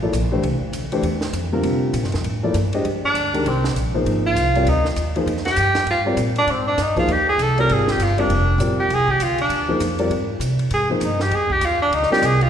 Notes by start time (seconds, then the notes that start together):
Already playing: A1
0.02 F3 A#3 E4 A4 D5
0.13 A#1, hi-hat pedal, ride
0.31 E3 A3 D4 G4 C5
0.43 C2, ride
0.61 muted upright bass stroke
0.73 D2, hi-hat pedal, ride
0.92 E3 A3 D4 G4 C5, ride
1.02 E2, ride
1.21 snare
1.33 F2, hi-hat pedal, ride
1.53 D3 G3 C4 F4 A#4
1.63 C3, ride
1.93 A#2, hi-hat pedal, ride
2.04 G2, snare
2.12 F2, snare, ride
2.24 A2, ride
2.43 F3 A#3 E4 A4 D5
2.54 G2, hi-hat pedal, ride
2.73 G#3 D4 G4 C5 D#5, ride
2.84 F2, ride
3.03 D4, muted upright bass stroke
3.14 D2, hi-hat pedal, ride
3.34 D#3 G#3 D4 G4 A#4, ride
3.44 C2 C4, ride
3.64 snare
3.74 A#1, hi-hat pedal, ride
3.94 F3 A#3 D#4 G#4 C5
4.05 G#1, ride
4.26 F4
4.35 C2, hi-hat pedal, ride
4.55 G3 C4 F4 A#4 D5, ride
4.65 D2 D#4, ride
4.85 snare
4.96 D#2, hi-hat pedal, ride
5.16 F3 A#3 D#4 G#4 C5, ride
5.26 F2, ride
5.37 snare
5.45 G4, snare, ride
5.56 G2, hi-hat pedal, ride
5.75 snare, ride
5.86 G#2, ride
5.91 F4
6.06 G3 C4 F4 A#4 D5
6.17 A#2, hi-hat pedal, ride
6.36 D4, ride
6.47 G#2, ride
6.51 C4
6.67 D4
6.78 G2, snare, hi-hat pedal, ride
6.82 D#4
6.97 F3 A#3 D#4 F4 G#4 C5, kick, ride
7.07 D#2, ride
7.12 G4
7.29 G#4
7.38 C2, hi-hat pedal, ride
7.42 A4
7.58 G3 C4 F4 A#4 D5, ride
7.69 G#1, ride
7.73 G#4
7.88 G4, snare
7.99 G1, hi-hat pedal, ride
8.03 F4
8.18 G3 C4 D4 F4 A#4 D5, ride
8.29 F1, ride
8.58 A#1 G3 C4 F4 A#4 D5, hi-hat pedal, ride
8.77 G4, muted upright bass stroke
8.89 C2, ride
8.94 G#4
9.08 G4, kick
9.20 D2 F4, hi-hat pedal, ride
9.38 D4, ride
9.49 D#2, ride
9.68 F3 A#3 D#4 G#4 C5
9.80 F2, hi-hat pedal, ride
9.99 G3 C4 F4 A#4 D5, ride
10.09 G#2, ride
10.40 C3, hi-hat pedal, ride
10.59 ride
10.71 G#2 G#4, ride
10.90 F3 A#3 C4 D#4 G#4 C5
11.00 G2, hi-hat pedal, ride
11.05 D#4
11.20 G4, snare
11.31 F2 G#4, ride
11.50 G4, kick
11.61 D#2 F4, hi-hat pedal, ride
11.82 D4
11.91 D2 D#4, ride
12.03 snare
12.10 G3 C4 F4 G4 A#4 D5, muted upright bass stroke, snare
12.22 C2 G#4, hi-hat pedal, ride
12.41 F4, ride